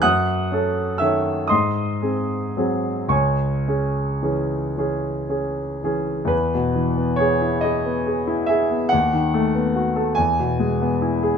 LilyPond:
\new Staff \with { instrumentName = "Grand piano" } { \time 6/8 \key cis \minor \tempo 4. = 44 << { <fis'' dis''' fis'''>4 <e'' e'''>8 <dis'' bis'' dis'''>4. | <cis'' gis'' cis'''>4. r4. | \key e \major b'4 cis''8 dis''4 e''8 | fis''4. gis''4. | } \\ { fis,8 <cis' a'>8 <dis cis' a'>8 gis,8 <bis gis'>8 <fis bis gis'>8 | cis,8 <cis' gis'>8 <e cis' gis'>8 <e cis' gis'>8 <cis' gis'>8 <e cis' gis'>8 | e,16 b,16 e16 b16 gis'16 e'16 gis'16 b16 gis'16 e'16 gis'16 b16 | dis,16 dis16 a16 b16 fis'16 a'16 e,16 b,16 gis16 b16 e'16 gis'16 | } >> }